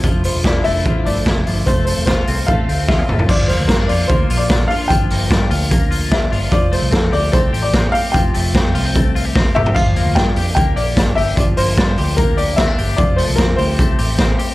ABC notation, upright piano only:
X:1
M:4/4
L:1/16
Q:1/4=148
K:Gdor
V:1 name="Upright piano"
z2 c2 d2 e4 d6 | c2 c2 c4 f4 e4 | d2 c2 B2 d2 c3 d3 f2 | g8 z4 e4 |
d2 c2 A2 d2 c3 d3 f2 | g8 z6 e2 | f4 g4 g2 d4 e2 | d2 c6 B2 d2 e4 |
d2 c2 B2 c8- c2 |]